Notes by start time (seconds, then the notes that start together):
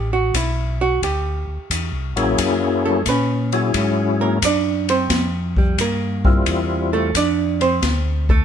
Already playing: A1 G4
0.13 F#4
0.34 B1 E4, kick, hi-hat pedal, ride
0.81 F#4
1.02 D2 G4, kick, ride
1.47 D2
1.70 E2, kick, hi-hat pedal, ride
1.91 C2
2.14 A1 F#3 A#3 C#4 E4 G#4, ride
2.38 F#2, kick, ride
2.85 A3 A4
3.05 A#2 C#4 B4, kick, hi-hat pedal, ride
3.52 F#3 C#4 E4 G#4, ride
3.74 G#2, kick, ride
4.21 A#3 A#4
4.42 F#2 D5, kick, hi-hat pedal, ride
4.46 D4
4.89 C4 C5, ride
5.10 F2, kick, snare, ride
5.56 G3 G4, kick
5.78 G2 A#3 A#4, kick, hi-hat pedal, ride
6.25 G3 C4 E4 F4, kick
6.46 E2, kick, ride
6.93 A3 A4
7.14 F2 D4 D5, kick, hi-hat pedal, ride
7.61 C4 C5, ride
7.82 D2, kick, snare, ride
8.29 A3 A4, kick